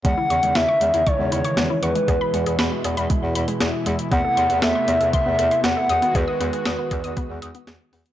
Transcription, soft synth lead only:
X:1
M:4/4
L:1/8
Q:1/4=118
K:C#m
V:1 name="Soft synth lead"
f2 e2 c3 B- | B2 z6 | f2 e2 e2 f2 | B6 z2 |]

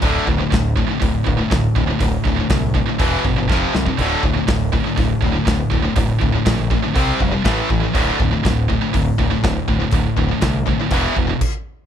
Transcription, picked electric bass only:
X:1
M:4/4
L:1/8
Q:1/4=121
K:Dm
V:1 name="Picked electric bass" clef=bass
D,,, D,,, D,,,2 D,,, D,,, D,,, D,,, | D,,, D,,, C,,2 E,,, G,,, F,,, C,, | D,,, D,,, D,,,2 D,,, D,,, D,,, D,,, | D,,, D,,, B,,,2 C,, F,,, A,,, A,,, |
D,,, D,,, D,,,2 D,,, D,,, D,,, D,,, | D,,, D,,, C,,2 E,,, E,,, z2 |]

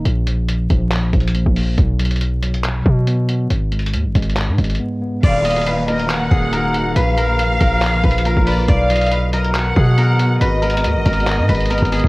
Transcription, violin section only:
X:1
M:4/4
L:1/8
Q:1/4=139
K:Ebm
V:1 name="Violin section"
z8 | z8 | z8 | f3 e g4 |
f6- f =d | f3 ^d ^f4 | e8 |]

